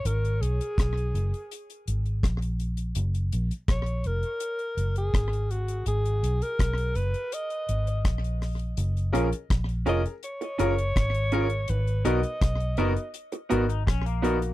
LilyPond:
<<
  \new Staff \with { instrumentName = "Alto saxophone" } { \time 4/4 \key gis \dorian \tempo 4 = 82 ais'8 gis'4. r2 | r4 cis''8 ais'4~ ais'16 gis'8. fis'8 | gis'8. ais'8. b'8 dis''4 r4 | r4. dis''8 cis''2 |
b'8 dis''4. r2 | }
  \new Staff \with { instrumentName = "Grand piano" } { \time 4/4 \key gis \dorian r1 | r1 | r1 | r8 <cis' eis' gis' ais'>16 r8. <cis' eis' gis' ais'>16 <gis' ais'>16 r8 <cis' eis' gis' ais'>16 r8. <cis' eis' gis' ais'>16 r16 |
r8 <b dis' fis' ais'>16 r8. <b dis' fis' ais'>16 r8. <b dis' fis' ais'>16 r8. <b dis' fis' ais'>16 <fis' ais'>16 | }
  \new Staff \with { instrumentName = "Clean electric guitar" } { \time 4/4 \key gis \dorian r1 | r1 | r1 | r8 <cis' eis' ais'>8 r8 <cis' eis' ais'>8 r8 <cis' eis' ais'>8 r8 <cis' eis' ais'>8 |
r8 <b fis' ais'>8 r8 <b fis' ais'>8 r8 <b fis' ais'>8 r8 <b fis' ais'>8 | }
  \new Staff \with { instrumentName = "Clean electric guitar" } { \time 4/4 \key gis \dorian r1 | r1 | r1 | r1 |
r2 r8. dis'16 cis'16 ais8. | }
  \new Staff \with { instrumentName = "Fingered electric bass" } { \clef bass \time 4/4 \key gis \dorian gis,,8 b,,16 r16 b,,8 fis,,16 r8. gis,,8 ais,,4 | fis,,8 ais,,16 r16 ais,,8 eis,,16 r8. fis,,8 gis,,4 | gis,,8 b,,16 r16 b,,8 fis,,16 r8. gis,,8 ais,,4 | fis,,8 ais,,16 r16 ais,,8 eis,,16 r8. fis,,8 gis,,4 |
gis,,8 b,,16 r16 b,,8 fis,,16 r8. gis,,8 ais,,4 | }
  \new DrumStaff \with { instrumentName = "Drums" } \drummode { \time 4/4 hh16 hh16 hh16 hh16 <hh bd ss>16 hh16 hh16 hh16 hh16 hh16 hh16 hh16 <hh bd ss>16 hh16 hh16 hh16 | hh16 hh16 hh16 hh16 <hh bd ss>16 hh16 hh16 hh16 hh16 hh16 hh16 hh16 <hh bd ss>16 hh16 hh16 hh16 | hh16 hh16 hh16 hh16 <hh bd ss>16 hh16 hh16 hh16 hh16 hh16 hh16 hh16 <hh bd ss>16 hh16 <hho ss>16 hh16 | hh16 hh16 hh16 hh16 <hh bd ss>16 hh16 hh16 hh16 hh16 hh16 hh16 hh16 <hh bd ss>16 hh16 hh16 hh16 |
hh16 hh16 hh16 hh16 <hh bd ss>16 hh16 hh16 hh16 hh16 hh16 hh16 hh16 <hh bd ss>16 hh16 hh16 hh16 | }
>>